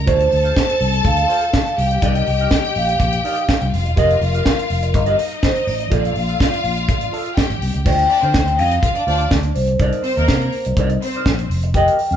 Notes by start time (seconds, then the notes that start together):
0.06 D2 F4 A4 C5 D5 A5, kick, closed hi-hat
0.20 closed hi-hat
0.31 D2, muted clean electric guitar stroke, open hi-hat
0.44 F4 C5 F5, closed hi-hat
0.55 muted clean electric guitar stroke, kick, snare
0.69 closed hi-hat
0.80 C2, open hi-hat
0.93 muted clean electric guitar stroke, closed hi-hat
1.05 D2 F5, kick, closed hi-hat
1.17 muted clean electric guitar stroke, closed hi-hat
1.28 F4 C5 D5, open hi-hat
1.42 muted clean electric guitar stroke, closed hi-hat
1.53 muted clean electric guitar stroke, kick, snare
1.66 muted clean electric guitar stroke, closed hi-hat
1.77 C2 G4 G5, open hi-hat
1.91 muted clean electric guitar stroke, closed hi-hat
2.02 C2 D#4 A#4 D5 D#5, kick, closed hi-hat
2.15 closed hi-hat
2.26 C2, muted clean electric guitar stroke, open hi-hat
2.39 D#4 A#4 D#5, closed hi-hat
2.51 D#5, muted clean electric guitar stroke, kick, snare
2.64 muted clean electric guitar stroke, closed hi-hat
2.76 A#1 F5, open hi-hat
2.88 muted clean electric guitar stroke, closed hi-hat
3.00 A#1, kick, closed hi-hat
3.12 muted clean electric guitar stroke, closed hi-hat
3.24 D#4 A#4 D5, open hi-hat
3.36 muted clean electric guitar stroke, closed hi-hat
3.49 muted clean electric guitar stroke, kick, snare
3.61 C2, muted clean electric guitar stroke, closed hi-hat
3.72 F1 F4 F5, open hi-hat
3.85 E1, muted clean electric guitar stroke, closed hi-hat
3.96 F1 G4 A#4 D#5, kick, closed hi-hat
4.10 closed hi-hat
4.21 F1, muted clean electric guitar stroke, open hi-hat
4.34 G4 A#4 F5, closed hi-hat
4.45 muted clean electric guitar stroke, kick, snare
4.58 muted clean electric guitar stroke, closed hi-hat
4.70 F1, open hi-hat
4.83 muted clean electric guitar stroke, closed hi-hat
4.94 G1 D#5, muted clean electric guitar stroke, kick, closed hi-hat
5.06 G4 A#4 D#5, closed hi-hat
5.18 D#4 D#5, muted clean electric guitar stroke, open hi-hat
5.31 muted clean electric guitar stroke, closed hi-hat
5.42 C5, muted clean electric guitar stroke, kick, snare
5.55 muted clean electric guitar stroke, closed hi-hat
5.67 A1 D5, open hi-hat
5.80 muted clean electric guitar stroke, closed hi-hat
5.90 A#1 F4 A4 D5 F5, kick, closed hi-hat
6.05 closed hi-hat
6.15 A#1, muted clean electric guitar stroke, open hi-hat
6.29 F4 A4 F5, closed hi-hat
6.40 muted clean electric guitar stroke, kick, snare
6.53 muted clean electric guitar stroke, closed hi-hat
6.64 A#1, open hi-hat
6.77 muted clean electric guitar stroke, closed hi-hat
6.89 A1, kick, closed hi-hat
7.01 muted clean electric guitar stroke, closed hi-hat
7.12 F4 A4 D5, open hi-hat
7.26 muted clean electric guitar stroke, closed hi-hat
7.36 G4 G5, kick, snare
7.50 A1, muted clean electric guitar stroke, closed hi-hat
7.62 C2, open hi-hat
7.74 C#2, muted clean electric guitar stroke, closed hi-hat
7.85 D2 F4 C5 D5 G5, kick, crash
7.99 closed hi-hat
8.10 D4 D5, muted clean electric guitar stroke, open hi-hat
8.23 D3 C4 F4 C5 F5, closed hi-hat
8.34 D2, muted clean electric guitar stroke, kick, snare
8.48 closed hi-hat
8.58 F2 D#4 D#5 F5, open hi-hat
8.71 muted clean electric guitar stroke, closed hi-hat
8.83 F4 F5, kick, closed hi-hat
8.95 D4 D5, muted clean electric guitar stroke, closed hi-hat
9.06 D2 D4 F4 C5 D5, open hi-hat
9.20 muted clean electric guitar stroke, closed hi-hat
9.31 D2 D5, muted clean electric guitar stroke, kick, snare
9.43 muted clean electric guitar stroke, closed hi-hat
9.55 C2 C5, open hi-hat
9.67 muted clean electric guitar stroke, closed hi-hat
9.79 C2 D#4 A#4 D5, kick, closed hi-hat
9.92 closed hi-hat
10.03 C4 C5, muted clean electric guitar stroke, open hi-hat
10.16 D#2 A#3 D#4 A#4 D#5, closed hi-hat
10.28 C3, kick, snare
10.41 muted clean electric guitar stroke, closed hi-hat
10.52 open hi-hat
10.65 C2, muted clean electric guitar stroke, closed hi-hat
10.77 C2 D#4 A#4 D5, kick, closed hi-hat
10.89 muted clean electric guitar stroke, closed hi-hat
11.02 C4 C5, muted clean electric guitar stroke, open hi-hat
11.14 D#4 A#4 D5, closed hi-hat
11.26 A#1, kick, snare
11.39 muted clean electric guitar stroke, closed hi-hat
11.50 F1, open hi-hat
11.63 muted clean electric guitar stroke, closed hi-hat
11.74 G4 A#4 D#5 G5, kick, closed hi-hat
11.88 closed hi-hat
11.99 muted clean electric guitar stroke, open hi-hat
12.11 F2 F5, closed hi-hat